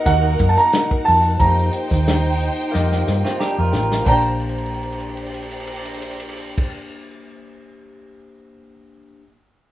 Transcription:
0.00 0.05 A#3 medium
0.00 0.06 D#4 medium
0.00 1.35 D#4 medium
0.00 0.07 F#4 medium
0.00 1.35 A#4 medium
0.00 0.07 D#5 medium
0.00 1.35 F#5 medium
0.05 0.35 D#2 loud
0.05 1.12 A#3 medium
0.05 1.12 D#4 medium
0.05 1.12 F#4 medium
0.05 1.13 D#5 medium
0.05 0.47 F#5 loud
0.05 kick medium
0.05 closed hi-hat medium
0.39 0.55 F#2 medium
0.39 kick medium
0.39 closed hi-hat medium
0.49 0.57 A5 medium
0.57 1.08 A#5 loud
0.57 closed hi-hat medium
0.73 snare loud
0.73 closed hi-hat medium
0.91 kick medium
1.05 1.36 F2 medium
1.05 1.40 A5 loud
1.05 open hi-hat medium
1.39 1.68 F2 loud
1.39 1.46 A3 medium
1.39 4.02 D#4 medium
1.39 2.46 F4 medium
1.39 2.46 G4 medium
1.39 4.02 C5 medium
1.39 2.47 D#5 medium
1.39 4.02 G5 loud
1.39 3.69 A#5 medium
1.39 kick loud
1.39 closed hi-hat medium
1.46 2.49 A#3 medium
1.59 closed hi-hat medium
1.73 closed hi-hat medium
1.91 2.48 D#2 loud
1.91 kick medium
1.91 snare soft
2.08 snare loud
2.08 closed hi-hat loud
2.40 closed hi-hat medium
2.71 3.02 F2 medium
2.71 3.78 A#3 medium
2.71 3.79 F4 medium
2.71 3.79 G4 medium
2.71 3.79 D#5 loud
2.71 snare medium
2.92 snare medium
3.07 3.22 G2 medium
3.07 snare medium
3.25 3.39 C4 medium
3.25 3.39 F4 medium
3.25 snare medium
3.39 3.57 D4 medium
3.39 3.57 G4 medium
3.39 3.70 A#5 medium
3.39 snare medium
3.58 3.71 F2 medium
3.58 4.05 F4 medium
3.58 4.04 A#4 medium
3.72 4.01 A1 medium
3.72 4.03 G5 medium
3.72 snare medium
3.92 snare medium
4.02 6.63 A#3 medium
4.02 6.65 D4 medium
4.06 6.66 A#1 medium
4.06 6.66 D4 medium
4.06 6.67 G4 medium
4.06 6.66 C5 medium
4.06 6.66 G5 medium
4.06 6.67 A#5 medium
4.06 kick loud
4.06 crash medium
4.11 6.68 C5 medium
4.40 crash soft
4.49 ride soft
4.58 crash soft
4.66 ride soft
4.74 crash medium
4.83 ride medium
4.92 crash medium
5.00 ride medium
5.08 crash medium
5.17 ride medium
5.26 crash medium
5.34 ride medium
5.42 crash medium
5.51 ride medium
5.60 crash medium
5.67 ride medium
5.76 crash medium
5.85 ride medium
5.94 crash medium
6.02 ride medium
6.11 crash medium
6.20 ride medium
6.29 crash medium
6.58 kick loud
6.58 crash loud

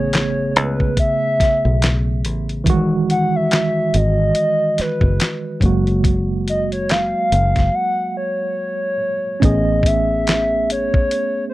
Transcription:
0.00 0.56 A1 medium
0.00 2.61 C#3 medium
0.00 2.62 A3 medium
0.00 2.63 B3 medium
0.00 2.64 G#4 medium
0.00 0.51 C#5 medium
0.13 snare medium
0.13 clap medium
0.13 closed hi-hat medium
0.51 0.59 C#5 medium
0.56 0.93 C#2 medium
0.56 0.98 B4 medium
0.56 closed hi-hat medium
0.80 kick medium
0.97 2.21 E5 loud
0.97 kick medium
0.97 closed hi-hat medium
1.40 muted fingered electric bass stroke soft
1.40 kick medium
1.40 snare soft
1.40 closed hi-hat medium
1.65 2.25 B1 medium
1.82 snare medium
1.82 clap medium
1.82 closed hi-hat medium
2.25 2.67 A1 medium
2.25 closed hi-hat medium
2.49 closed hi-hat soft
2.64 3.89 E1 loud
2.64 5.59 D#3 medium
2.64 5.57 E3 medium
2.64 2.73 G3 soft
2.64 kick loud
2.64 closed hi-hat medium
2.70 5.61 G#3 medium
2.70 5.60 F#4 medium
3.10 3.37 F#5 medium
3.10 closed hi-hat medium
3.36 3.98 E5 medium
3.51 snare medium
3.51 clap medium
3.51 closed hi-hat medium
3.94 4.31 G#1 medium
3.94 4.82 D#5 loud
3.94 closed hi-hat medium
4.35 closed hi-hat medium
4.78 5.63 B4 medium
4.78 muted fingered electric bass stroke soft
4.78 snare soft
4.78 closed hi-hat medium
5.01 5.18 F#1 medium
5.01 kick medium
5.20 snare loud
5.20 clap medium
5.20 closed hi-hat medium
5.60 7.12 F#1 medium
5.60 8.95 F#3 medium
5.60 8.96 G#3 soft
5.60 8.97 A#3 soft
5.60 kick medium
5.60 closed hi-hat medium
5.65 8.98 F#4 medium
5.87 closed hi-hat soft
6.04 kick loud
6.04 closed hi-hat medium
6.48 6.70 D#5 medium
6.48 closed hi-hat medium
6.72 6.92 C#5 medium
6.72 closed hi-hat soft
6.89 7.76 F5 medium
6.89 snare medium
6.89 clap medium
6.89 closed hi-hat medium
7.32 7.69 F#1 medium
7.32 closed hi-hat medium
7.56 kick medium
7.56 snare soft
7.56 closed hi-hat soft
7.75 8.16 F#5 loud
8.17 9.45 C#5 medium
9.40 10.89 A1 loud
9.40 11.54 A3 soft
9.40 11.54 B3 medium
9.40 11.54 C#4 medium
9.40 9.88 D#5 medium
9.40 kick loud
9.40 closed hi-hat medium
9.45 11.54 G#4 medium
9.83 10.70 E5 medium
9.83 kick medium
9.83 closed hi-hat medium
10.27 snare medium
10.27 clap medium
10.27 closed hi-hat medium
10.70 11.45 C#5 loud
10.70 closed hi-hat medium
10.94 kick medium
11.11 closed hi-hat medium
11.49 11.54 C5 medium

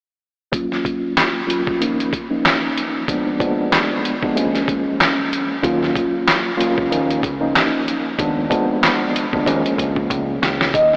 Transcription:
0.52 1.41 D#2 medium
0.52 1.42 F#3 medium
0.52 1.42 A#3 medium
0.52 1.42 C#4 medium
0.52 1.42 F4 loud
0.52 kick loud
0.52 closed hi-hat medium
0.72 snare soft
0.85 kick medium
0.85 closed hi-hat medium
1.17 snare loud
1.17 clap medium
1.17 closed hi-hat medium
1.47 1.79 D#2 medium
1.47 1.80 F#3 medium
1.47 1.79 A#3 medium
1.47 1.80 C#4 medium
1.47 1.80 F4 medium
1.47 closed hi-hat medium
1.67 kick medium
1.80 2.10 D#2 loud
1.80 2.10 F3 medium
1.80 2.10 A#3 medium
1.80 2.10 C#4 medium
1.80 2.10 D#4 loud
1.80 closed hi-hat medium
2.00 closed hi-hat soft
2.13 kick medium
2.13 closed hi-hat medium
2.30 3.02 D#2 medium
2.30 3.03 F3 medium
2.30 3.03 A#3 medium
2.30 3.03 C#4 medium
2.30 3.03 D#4 loud
2.45 snare loud
2.45 clap medium
2.45 closed hi-hat medium
2.78 closed hi-hat medium
3.08 3.38 D#2 medium
3.08 3.38 F3 medium
3.08 3.38 G#3 medium
3.08 3.38 B3 medium
3.08 3.38 D4 loud
3.08 kick loud
3.08 closed hi-hat loud
3.39 4.14 D#2 medium
3.39 4.14 F3 medium
3.39 4.14 G#3 medium
3.39 4.15 B3 medium
3.39 4.15 D4 medium
3.39 kick medium
3.39 closed hi-hat medium
3.72 snare loud
3.72 clap medium
3.72 closed hi-hat loud
4.05 closed hi-hat medium
4.23 4.34 D#2 medium
4.23 4.34 F3 medium
4.23 4.35 G#3 medium
4.23 4.37 B3 medium
4.23 4.37 D4 medium
4.23 kick medium
4.36 5.55 D#2 medium
4.36 5.55 F3 medium
4.36 5.55 G#3 medium
4.36 5.55 A#3 medium
4.36 5.55 C#4 loud
4.36 closed hi-hat medium
4.55 snare soft
4.55 closed hi-hat soft
4.68 kick medium
4.68 closed hi-hat medium
5.00 snare loud
5.00 clap medium
5.00 closed hi-hat medium
5.33 closed hi-hat medium
5.62 6.52 D#2 medium
5.62 5.92 D#2 loud
5.62 6.52 F#3 medium
5.62 6.52 A#3 medium
5.62 6.52 C#4 medium
5.62 6.52 F4 loud
5.62 kick loud
5.62 closed hi-hat loud
5.83 snare soft
5.96 kick medium
5.96 closed hi-hat medium
6.28 snare loud
6.28 clap medium
6.28 closed hi-hat loud
6.57 6.89 D#2 medium
6.57 6.90 F#3 medium
6.57 6.90 A#3 medium
6.57 6.90 C#4 medium
6.57 6.90 F4 loud
6.57 closed hi-hat medium
6.78 6.90 C#2 medium
6.78 kick medium
6.90 7.21 D#2 medium
6.90 7.20 D#2 loud
6.90 7.21 F3 medium
6.90 7.21 A#3 medium
6.90 7.21 C#4 medium
6.90 7.21 D#4 loud
6.90 closed hi-hat medium
7.11 closed hi-hat medium
7.23 7.51 C#2 loud
7.23 kick medium
7.23 closed hi-hat medium
7.40 8.13 D#2 medium
7.40 8.13 F3 medium
7.40 8.13 A#3 medium
7.40 8.13 C#4 medium
7.40 8.13 D#4 medium
7.55 snare loud
7.55 clap medium
7.55 closed hi-hat medium
7.88 closed hi-hat medium
8.19 8.47 D#2 loud
8.19 8.48 D#2 medium
8.19 8.49 F3 medium
8.19 8.49 G#3 medium
8.19 8.49 B3 medium
8.19 8.49 D4 loud
8.19 kick loud
8.19 closed hi-hat loud
8.50 9.25 D#2 medium
8.50 9.25 F3 medium
8.50 9.25 G#3 medium
8.50 9.25 B3 medium
8.50 9.25 D4 medium
8.50 kick medium
8.50 closed hi-hat medium
8.83 snare loud
8.83 clap medium
8.83 closed hi-hat medium
9.16 closed hi-hat medium
9.33 9.45 D2 medium
9.33 9.45 D#2 medium
9.33 9.45 F3 medium
9.33 9.45 G#3 medium
9.33 9.47 B3 medium
9.33 9.47 D4 loud
9.33 kick medium
9.46 10.65 D#2 medium
9.46 9.63 D#2 loud
9.46 10.65 F3 medium
9.46 10.65 G#3 medium
9.46 10.65 A#3 medium
9.46 10.65 C#4 loud
9.46 kick medium
9.46 closed hi-hat medium
9.65 muted fingered electric bass stroke soft
9.65 closed hi-hat soft
9.78 10.07 C#2 medium
9.78 kick medium
9.78 closed hi-hat medium
9.96 kick medium
10.10 10.39 C#2 loud
10.10 kick medium
10.10 closed hi-hat medium
10.42 10.70 C#2 medium
10.42 snare medium
10.42 closed hi-hat medium
10.61 snare medium
10.74 10.96 D#2 loud
10.74 10.96 D#5 medium
10.74 kick loud
10.74 closed hi-hat loud
10.93 snare soft

